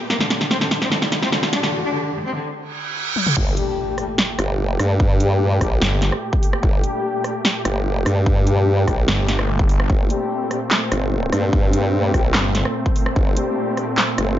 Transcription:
Already playing: supersaw synth A#2 A3 G4, riser
0.10 cello A#3, snare
0.21 cello D3, snare
0.30 snare, closed hi-hat
0.41 cello D3, snare
0.51 cello C4, snare
0.61 cello D3, snare
0.71 cello D3, snare, open hi-hat
0.82 cello C4, snare
0.92 cello D3, snare
1.02 cello D3, snare
1.12 cello D3, snare, closed hi-hat
1.23 cello C4, snare
1.32 cello D3, snare
1.43 cello D3, snare, closed hi-hat
1.53 cello D4, snare, closed hi-hat
1.63 cello D3, snare
1.73 cello D3
1.84 cello D4
1.94 cello D3
2.04 cello D3
2.14 cello D3
2.25 cello C4
2.35 cello D3
2.55 reverse cymbal
3.16 high tom
3.27 mid tom
3.37 wobble bass G1, supersaw synth A#2 A3 G4, kick, crash, impact
3.57 brass ensemble G3 D4 G4, closed hi-hat
3.98 brass ensemble G3 D4 G4, cross-stick, open hi-hat
4.18 snare, closed hi-hat
4.39 wobble bass G1, cross-stick, closed hi-hat
4.79 wobble bass G2, cross-stick, open hi-hat
5.00 kick
5.20 brass ensemble G3 D4 G4, closed hi-hat
5.61 wobble bass A#1, brass ensemble G3 D4 G4, kick, cross-stick, open hi-hat
5.82 detuned saw bass G1, snare, closed hi-hat
6.02 snare, closed hi-hat
6.12 cross-stick
6.33 kick
6.43 open hi-hat
6.53 cross-stick
6.63 wobble bass G1, kick
6.83 brass ensemble G3 D4 G4, closed hi-hat
7.24 brass ensemble G3 D4 G4, cross-stick, open hi-hat
7.45 snare, closed hi-hat
7.65 wobble bass G1, cross-stick, closed hi-hat
8.06 wobble bass G2, cross-stick, open hi-hat
8.26 kick
8.47 brass ensemble G3 D4 G4, closed hi-hat
8.88 wobble bass A#1, brass ensemble G3 D4 G4, kick, cross-stick, open hi-hat
9.08 detuned saw bass G1, snare, closed hi-hat
9.28 snare, closed hi-hat
9.39 cross-stick
9.59 kick
9.69 open hi-hat
9.80 cross-stick
9.90 wobble bass G1, supersaw synth C4, kick
10.10 brass ensemble G3 D4 G4, closed hi-hat
10.51 brass ensemble G3 D4 G4, cross-stick, open hi-hat
10.71 snare, clap, closed hi-hat
10.92 wobble bass G1, cross-stick, closed hi-hat
11.32 wobble bass G2, cross-stick, open hi-hat
11.53 kick
11.73 brass ensemble G3 D4 G4, closed hi-hat
12.14 wobble bass A#1, brass ensemble G3 D4 G4, kick, cross-stick, open hi-hat
12.35 detuned saw bass G1, snare, clap, closed hi-hat
12.55 snare, closed hi-hat
12.65 cross-stick
12.86 kick
12.96 open hi-hat
13.06 cross-stick
13.16 wobble bass G1, kick
13.37 brass ensemble G3 D4 G4, closed hi-hat
13.77 brass ensemble G3 D4 G4, cross-stick, open hi-hat
13.98 snare, clap, closed hi-hat
14.18 wobble bass G1, cross-stick, closed hi-hat

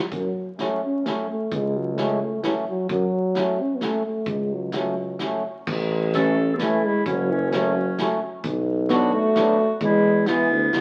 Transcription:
0.11 tuba F#2, euphonium F#3, kick, closed hi-hat
0.57 accordion F#3 A3 C#4, snare, closed hi-hat
0.84 euphonium C#4
1.03 accordion F#3 A3 C#4, euphonium A3, snare, closed hi-hat
1.31 euphonium A3
1.52 tuba C#2, euphonium G#3, kick, closed hi-hat
1.76 euphonium F#3
1.94 accordion F#3 A3 C#4, euphonium A3
1.98 euphonium G#3, snare, closed hi-hat
2.23 euphonium A3
2.42 euphonium E3, accordion F#3 A3 C#4, snare, closed hi-hat
2.69 euphonium F#3
2.89 tuba F#2, euphonium F#3, kick, closed hi-hat
3.35 accordion F#3 A3 C#4, snare, closed hi-hat
3.62 euphonium C#4
3.76 euphonium B3
3.81 accordion F#3 A3 C#4, euphonium A3, snare, closed hi-hat
4.06 euphonium A3
4.26 tuba C#2, euphonium G#3, kick, closed hi-hat
4.53 euphonium F#3
4.72 accordion F#3 A3 C#4, euphonium F#3, snare, closed hi-hat
5.19 accordion F#3 A3 C#4, snare, closed hi-hat
5.67 tuba A1, kick, crash
6.13 accordion E3 A3 C#4, euphonium C#4, clarinet A4, snare, closed hi-hat
6.54 euphonium B3, clarinet G#4
6.58 accordion E3 A3 C#4, clarinet E4, snare, closed hi-hat
6.62 euphonium A3
6.85 euphonium G#3, clarinet E4
7.06 tuba F#1, euphonium F#3, clarinet C#4, kick, closed hi-hat
7.31 euphonium E3, clarinet C#4
7.51 accordion F#3 A3 C#4, euphonium F#3, clarinet C#4, snare, closed hi-hat
7.97 accordion F#3 A3 C#4, snare, closed hi-hat
8.44 tuba B1, kick, closed hi-hat
8.89 accordion F#3 B3 D4, euphonium B3, clarinet F#4, snare, closed hi-hat
9.13 euphonium A3, clarinet F#4
9.34 accordion F#3 B3 D4, snare, closed hi-hat
9.81 tuba E2, euphonium G#3, clarinet E4, kick, closed hi-hat
10.25 accordion E3 G#3 B3, euphonium E3, clarinet B3, snare, closed hi-hat
10.51 tuba D2
10.73 tuba C#2, accordion E3 G#3 B3, snare, closed hi-hat

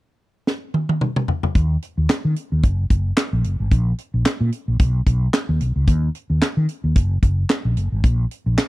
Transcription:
0.47 snare
0.74 high tom
0.89 high tom
1.01 mid tom
1.16 mid tom
1.28 floor tom
1.43 floor tom
1.55 fretless electric bass D#2, kick, closed hi-hat
1.82 closed hi-hat
1.97 fretless electric bass D#2
2.09 muted fretless electric bass stroke, snare, clap, closed hi-hat
2.25 fretless electric bass D#3
2.36 closed hi-hat
2.52 fretless electric bass D#2
2.63 fretless electric bass F#1, kick, closed hi-hat
2.90 fretless electric bass F#1, kick, closed hi-hat
3.17 snare, clap, closed hi-hat
3.33 fretless electric bass A#1
3.44 closed hi-hat
3.60 fretless electric bass G#1
3.71 fretless electric bass A#1, kick, closed hi-hat
3.98 closed hi-hat
4.14 fretless electric bass A#1
4.25 snare, clap, closed hi-hat
4.40 fretless electric bass A#2
4.52 closed hi-hat
4.68 fretless electric bass A#1
4.79 fretless electric bass B1, kick, closed hi-hat
5.06 fretless electric bass B1, kick, closed hi-hat
5.34 snare, clap, closed hi-hat
5.49 fretless electric bass D#2
5.61 fretless electric bass B1, closed hi-hat
5.76 fretless electric bass C#2
5.88 fretless electric bass D#2, kick, closed hi-hat
6.15 closed hi-hat
6.30 fretless electric bass D#2
6.42 muted fretless electric bass stroke, snare, clap, closed hi-hat
6.57 fretless electric bass D#3
6.69 closed hi-hat
6.84 fretless electric bass D#2
6.96 fretless electric bass F#1, kick, closed hi-hat
7.22 fretless electric bass F#1, kick, closed hi-hat
7.50 snare, clap, closed hi-hat
7.65 fretless electric bass A#1
7.77 fretless electric bass F#1, closed hi-hat
7.92 fretless electric bass G#1
8.04 fretless electric bass A#1, kick, closed hi-hat
8.31 closed hi-hat
8.46 fretless electric bass A#1
8.58 snare, clap, closed hi-hat

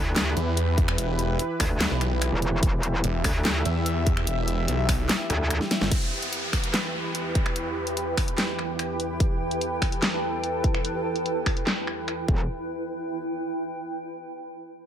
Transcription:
Already playing: wobble bass D2, analog synth pad E3 E4 G4 B4
0.16 snare, clap, closed hi-hat
0.37 detuned saw bass E2, closed hi-hat
0.57 closed hi-hat
0.78 kick, closed hi-hat
0.88 finger snap
0.98 detuned saw bass E1, closed hi-hat
1.19 closed hi-hat
1.39 closed hi-hat
1.60 wobble bass D2, finger snap, kick, open hi-hat
1.80 snare, clap, closed hi-hat
1.91 detuned saw bass B1
2.01 finger snap, closed hi-hat
2.22 finger snap, closed hi-hat
2.32 wobble bass E1
2.42 closed hi-hat
2.63 wobble bass E1, analog synth pad E5, kick, closed hi-hat
2.83 closed hi-hat
3.04 detuned saw bass E1, closed hi-hat
3.24 wobble bass D2, finger snap, kick, open hi-hat
3.45 snare, clap, closed hi-hat
3.65 detuned saw bass E2, closed hi-hat
3.86 closed hi-hat
4.07 kick, closed hi-hat
4.17 finger snap
4.27 detuned saw bass E1, closed hi-hat
4.48 closed hi-hat
4.68 detuned saw bass B1, closed hi-hat
4.89 finger snap, kick, open hi-hat
5.09 snare, clap, closed hi-hat
5.30 wobble bass D2, finger snap, closed hi-hat
5.50 finger snap, closed hi-hat
5.61 snare
5.71 snare, closed hi-hat
5.81 detuned saw bass G1, snare
5.91 analog synth pad E2 E3 G4 B4, ambient pad E4, kick, closed hi-hat, crash, downlifter
6.19 ambient pad B4, closed hi-hat
6.33 closed hi-hat
6.53 finger snap, kick, open hi-hat
6.64 closed hi-hat
6.74 snare, clap, closed hi-hat
6.93 ambient pad G5
7.15 closed hi-hat
7.35 kick, closed hi-hat
7.46 finger snap
7.56 closed hi-hat
7.87 closed hi-hat
7.97 closed hi-hat
8.17 finger snap, kick, open hi-hat
8.28 closed hi-hat
8.38 snare, clap, closed hi-hat
8.59 finger snap
8.79 finger snap, closed hi-hat
9.00 closed hi-hat
9.20 analog synth pad A4, kick, closed hi-hat
9.51 closed hi-hat
9.61 closed hi-hat
9.82 finger snap, kick, open hi-hat
9.92 closed hi-hat
10.02 snare, clap, closed hi-hat
10.44 closed hi-hat
10.64 kick, closed hi-hat
10.75 finger snap
10.85 closed hi-hat
11.16 closed hi-hat
11.26 closed hi-hat
11.46 finger snap, kick, open hi-hat
11.57 closed hi-hat
11.67 snare, clap, closed hi-hat
11.87 finger snap
12.08 finger snap, closed hi-hat
12.28 wobble bass E1, ambient pad E4, kick
12.35 ambient pad B4
12.61 ambient pad G5

